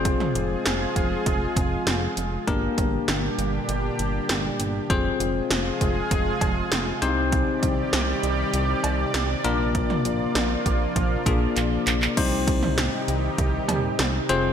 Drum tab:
CC |----------------|----------------|----------------|----------------|
HH |x-x-x-x-x-x-x-x-|x-x-x-x-x-x-x-x-|x-x-x-x-x-x-x-x-|x-x-x-x-x-x-x-x-|
CB |----------------|----------------|----------x-----|----------x-----|
CP |----------------|----------------|----------------|----------------|
SD |----o-------o---|----o-------o---|----o-------o---|----o-------o---|
T2 |-o--------------|----------------|----------------|----------------|
BD |o-----o-o-o-----|o-o-------------|o-----o-o-o-----|o-o-------------|

CC |----------------|x---------------|
HH |x-x-x-x-x-x-x-x-|x-x-x-x-x-x-x-x-|
CB |----------------|----------x-----|
CP |------------x-xx|----------------|
SD |----o-----------|----o-------o---|
T2 |-o--------------|---o------o-----|
BD |o-----o-o-o-----|o-o-----o-------|